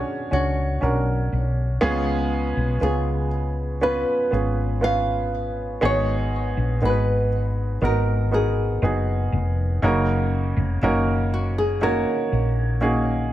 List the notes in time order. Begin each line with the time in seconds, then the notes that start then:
Already playing: C#4 D4 F#4 A#4 C#5
0.31 C#2 C#4 D4 F#4 C#5
0.81 B1 C#4 D4 F#4 A#4
1.32 B1
1.81 C#2 C#3 G#3 B3 C#4 F4 G#4
2.57 B1
2.81 C#2 B3 C#4 F4 G#4
3.81 B3 C#4 F4 B4
4.31 G#1 B3 C#4 F4 G#4
4.81 B3 C#4 F4 B4 F5
5.81 G#1 G#2 D#3 B3 D#4 F#4 G#4
5.85 C#5
6.57 A#1
6.82 G#1 B3 D#4 F#4 G#4 B4
6.90 B4
7.81 G#1 B3 D#4 F#4 A#4
8.32 B3 D#4 F#4 G#4 A#4
8.82 F#1 B3 D#4 F#4 G#4
9.32 F1
9.82 F#1 C#3 A#3 C#4 D#4 F#4 A#4
10.56 F1
10.82 F#1 A#3 C#4 D#4 F#4 A#4
11.34 F#4
11.58 G#4
11.81 A#3 C#4 D#4 F#4 A#4 C#5
12.32 A#1
12.81 A#3 C#4 D#4 F#4 G#4